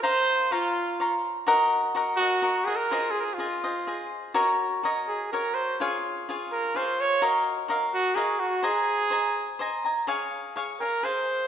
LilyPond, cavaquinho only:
\new Staff \with { instrumentName = "Cavaquinho" } { \time 3/4 \key des \major \tempo 4 = 126 <f'' bes'' c'''>4 <des'' f'' bes'' c'''>4 <des'' f'' bes'' c'''>4 | <ges' bes' ees'' ges''>4 <ges' bes' ees'' ges''>8 <bes' ees'' ges''>8 <ges' bes' ees'' ges''>8 <bes' ees'' ges''>8 | <f' aes' c'' ees''>4 <f' aes' c'' ees''>8 <aes' c'' ees''>8 <f' aes' c'' ees''>4 | <ges' bes' des'' ees''>4 <ges' bes' des'' ees''>4 <ges' bes' des'' ees''>4 |
<f' aes' des'' f''>4 <f' aes' des'' f''>4 <f' aes' des'' f''>4 | <ges' bes' ees'' f''>4 <ges' bes' ees'' f''>4 <ges' bes' ees'' f''>4 | <c'' ees'' aes'' bes''>4 <c'' ees'' aes'' bes''>4 <c'' ees'' aes'' bes''>8 <ees'' aes'' bes''>8 | <aes' des'' f'' aes''>4 <aes' des'' f'' aes''>8 <des'' f'' aes''>8 <aes' f'' aes''>4 | }